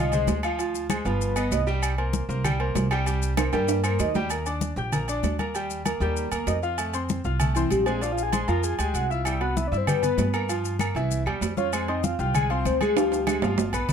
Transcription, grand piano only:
Already playing: F4 F5
0.13 G#3 G#4 C5
0.44 F3 F4 F5
0.59 F3 F4 F5
0.90 G#3 G#4 C5
1.05 F3 F4 F5
1.36 B3 B4 D#5
1.67 G3 G4 G5
1.98 A#3 A#4 C5
2.29 A#3 A#4 C5
2.44 G3 G4 G5
2.60 A#3 A#4 C5
2.91 G3 G4 G5
3.06 G3 G4 G5
3.37 A#3 A#4 C5
3.53 G3 G4 G5
3.84 A#3 A#4 C5
4.16 G3 G4 G5
4.31 A#3 A#4 A#5
4.46 D4 D5 D6
4.77 G4 G5 G6
4.93 A#3 A#4 A#5
5.09 D4 D5 D6
5.39 A#3 A#4 A#5
5.55 G3 G4 G5
5.86 A#3 A#4 A#5
6.02 G3 G4 G5
6.32 A#3 A#4 A#5
6.63 F4 F5 F6
6.78 A3 A4 A5
6.94 C4 C5 C6
7.25 F4 F5 F6
7.41 A3 A4 A5
7.56 C4 C5 C6
7.87 G#3 G#4 G#5
8.02 F3 F4 F5
8.33 G#3 G#4 G#5
8.48 F3 F4 F5
8.79 G#3 G#4 G#5
9.10 E4 E5 E6
9.26 G3 G4 G5
9.41 B3 B4 B5
9.72 E4 E5 E6
9.87 G3 G4 G5
10.03 B3 B4 B5
10.33 A#3 A#4 A#5
10.49 F3 F4 F5
10.80 A#3 A#4 A#5
10.96 E3 E4 E5
11.26 G3 G4 G5
11.57 F4 F5 F6
11.73 G#3 G#4 G#5
11.88 C4 C5 C6
12.20 F4 F5 F6
12.35 G#3 G#4 G#5
12.50 C4 C5 C6
12.81 G#3 G#4 G#5
12.97 F3 F4 F5
13.28 G#3 G#4 G#5
13.43 F3 F4 F5
13.74 B3 B4 B5

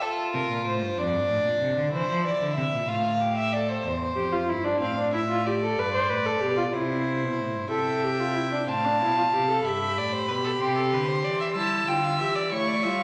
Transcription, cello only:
0.34 C3
0.50 A#2
0.66 A2
0.82 G2
0.98 F2
1.13 G2
1.29 A2
1.45 A#2
1.61 C3
1.77 D3
1.93 E3
2.09 F3
2.24 E3
2.41 D3
2.57 C3
2.73 A#2
2.89 A2
3.85 E2
4.17 F2
4.49 G2
4.81 A2
5.78 G2
6.10 A2
6.42 B2
6.75 C3
7.23 B2
7.40 A2
7.56 G2
7.72 C3
8.69 A2
9.01 B2
9.33 C3
9.65 G2
9.97 A2
10.29 B2
10.61 C3
10.93 D3
11.24 E3
11.55 G3
11.87 D3
12.19 E3
12.52 A3
12.84 G3

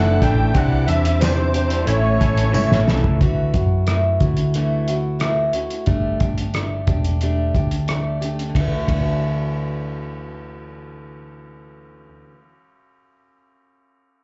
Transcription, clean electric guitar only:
Already playing: A2 D3 A3 D4 E4
0.21 D3 A3 D4 E4
0.37 A3 D4 E4
0.54 C3 E3 G3 D4 E4
0.86 E3 G3 D4 E4
1.19 C3 E3 G3 D4 E4
1.35 G3 D4 E4
1.52 muted clean electric guitar stroke
1.68 G3 D4 E4
1.84 A2 E3 A3 C#4 E4
2.02 A3 C#4 E4
2.18 E3 A3 C#4 E4
2.51 A2 E3 A3 C#4 E4
2.86 E3 A3 C#4 E4
3.02 A3 C#4 E4

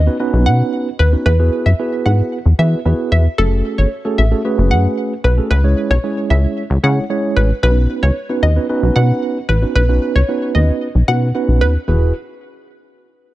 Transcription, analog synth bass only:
0.33 B1
0.46 B2
1.00 D#2
1.26 E2
1.66 F#2
2.06 G#2
2.46 E2
2.59 E3
2.85 E2
3.12 E2
3.38 F#1
3.78 G#1
4.18 A1
4.58 F#1
4.71 F#2
5.24 B1
5.51 C#2
5.90 B1
6.30 C#2
6.70 C#2
6.84 C#3
7.36 A1
7.63 B1
8.03 C#2
8.43 D#2
8.83 B1
8.96 B2
9.49 A1
9.75 B1
10.15 C#2
10.55 D#2
10.95 B1
11.08 B2
11.48 B1
11.61 D#2
11.88 E1

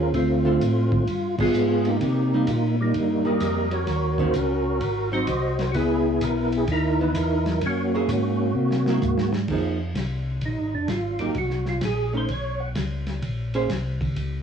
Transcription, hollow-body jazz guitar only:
Already playing: A#3 C#4 G#4 C5
0.45 D3 A3 C4 F4
1.40 G3 B3 F4 G#4
2.34 G3 A#3 D#4
3.25 G3 A#3 D#4
4.19 D#3 A#3 C#4 F#4
5.12 F#3 C4 D#4
7.01 E3 B3
7.95 F#3 A#3 E4 G#4
8.88 G#3 A#3 E4
9.50 F3 A#3 D#4 G#4
11.20 F#3 A#3 D#4
12.13 A3 C#4 D#4
13.55 A#3 C#4 G#4 C5

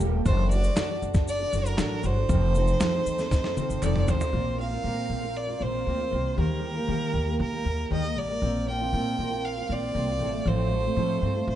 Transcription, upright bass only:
0.00 D#1
0.26 F#1
0.77 F#2
1.02 F#1
1.53 F#1
1.79 A1
2.04 G1
2.30 F1
2.81 F2
3.06 D#2
3.32 F2
3.57 muted upright bass stroke
3.69 F1
3.82 F1
4.08 A1
4.33 A#1
4.84 A#2
5.10 A#1
5.61 A#1
5.87 D2
6.12 C2
6.38 D#2
6.89 D#3
7.14 D#2
7.40 D#3
7.65 D#2
7.91 D#2
8.17 A1
8.42 A#1
8.93 A#2
9.19 A#1
9.70 A#1
9.95 C2
10.20 A1
10.46 A1
10.97 A2
11.22 G2
11.48 A2

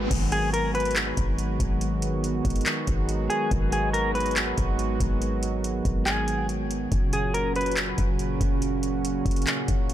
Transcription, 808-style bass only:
0.11 G#1
1.17 G#1
1.60 G#1
2.45 G#1
2.88 G#1
3.51 G#1
4.58 G#1
5.00 G#1
5.85 G#1
6.92 F#1
7.98 F#1
8.41 F#1
9.26 F#1
9.68 F#1

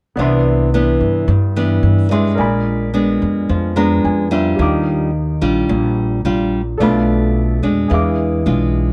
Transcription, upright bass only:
0.17 C2
1.01 G2
1.28 G2
1.83 G2
2.38 A#1
3.22 F2
3.50 F2
4.04 F2
4.59 D#2
5.42 A#1
5.69 A#1
6.25 A#1
6.80 B1
7.63 F2
7.91 E2
8.46 B1

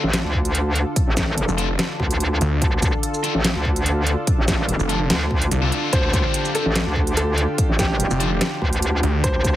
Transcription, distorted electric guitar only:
1.58 D4 F4 A4
3.24 D4 F4 A4
4.89 D4 F4 A4
5.62 D4 F4 A4
6.55 D4 F4 A4
8.20 D4 F4 A4

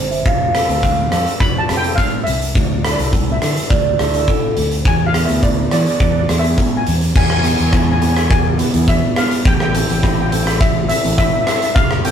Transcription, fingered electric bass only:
Already playing: G1
0.26 F1
0.69 D2
1.12 F2
1.41 F1
1.69 F1
2.27 C2
2.56 D2
2.98 C2
3.42 D3
3.71 D2
3.99 D2
4.57 D2
4.86 E2
5.29 D2
5.72 E3
6.00 E2
6.29 E2
6.87 E2
7.16 E2
7.59 E2
8.74 E2
9.45 A1
9.90 A1
11.05 A1
11.76 F1

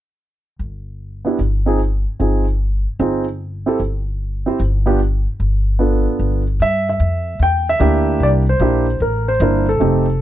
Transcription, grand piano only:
1.25 B3 D4 E4 G4
1.66 C4 D#4 F4 G#4
2.19 C4 D#4 F4 G#4
3.00 C4 D#4 F4 G#4
3.66 C4 E4 G4 A4
4.46 C4 E4 G4 C5
4.86 B3 D4 F4 G4
5.79 B3 D4 F4 A4
6.62 E5
6.89 E5
7.43 G5
7.69 E5
7.80 A#3 D4 E4 G4
8.23 D5
8.49 C5
8.60 A#3 D4 E4 G4
9.02 A#4
9.28 C5
9.41 A#3 D4 E4 A#4
9.69 A4
9.80 A3 C4 D#4 G4

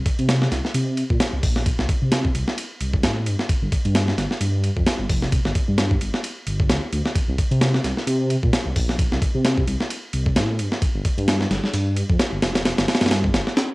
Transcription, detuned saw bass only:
0.19 C3
0.52 C2
0.74 C3
1.10 A#2
1.33 C2
1.43 A#1
1.79 C2
2.02 C3
2.35 C2
2.81 C2
3.04 A2
3.26 G2
3.49 G1
3.62 G1
3.85 G2
4.18 G1
4.41 G2
4.77 F2
4.99 G1
5.10 F1
5.45 G1
5.68 G2
6.01 G1
6.47 G1
6.69 D2
6.93 D2
7.16 C2
7.28 C2
7.51 C3
7.84 C2
8.07 C3
8.43 A#2
8.66 C2
8.76 A#1
9.12 C2
9.35 C3
9.67 C2
10.13 C2
10.36 A2
10.59 G2
10.82 G1
10.95 G1
11.18 G2
11.51 G1
11.73 G2
12.10 F2
12.32 G1
12.43 F1
12.79 G1
13.01 G2
13.34 G1

